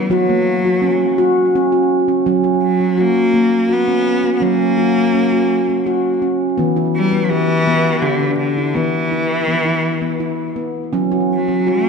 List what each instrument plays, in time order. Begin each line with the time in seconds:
Already playing: cello G3, handpan B3
0.10 handpan F#3 F#4, cello F#3
0.29 handpan A#3
0.65 handpan F#4
0.82 handpan C#4
1.18 handpan F#4
1.55 handpan C#4
1.72 handpan F#4
2.08 handpan C#4
2.26 handpan F#3 C#4
2.44 handpan F#4
2.63 cello F#3
2.80 handpan C#4
2.98 cello A#3, handpan F#4
3.34 handpan A#3
3.69 cello B3, handpan F#4
3.88 handpan C#4
4.24 handpan F#4
4.36 cello B3
4.41 handpan F#3 C#4, cello A#3
4.78 handpan F#4
5.14 handpan C#4
5.32 handpan F#4
5.69 handpan C#4
5.86 handpan F#4
6.22 handpan C#4
6.58 handpan E3 B3
6.76 handpan E4
6.96 cello G3
7.13 handpan B3
7.24 cello F#3
7.30 cello E3, handpan G4
7.67 handpan B3
8.02 cello D3, handpan G4
8.21 handpan D4
8.38 cello D3
8.58 handpan E4
8.75 cello E3, handpan E3 B3
9.11 handpan E4
9.48 handpan B3
9.66 handpan E4
10.01 handpan B3
10.20 handpan E4
10.56 handpan B3
10.93 handpan F#3 C#4
11.12 handpan F#4
11.34 cello F#3
11.48 handpan C#4
11.67 cello A#3, handpan F#4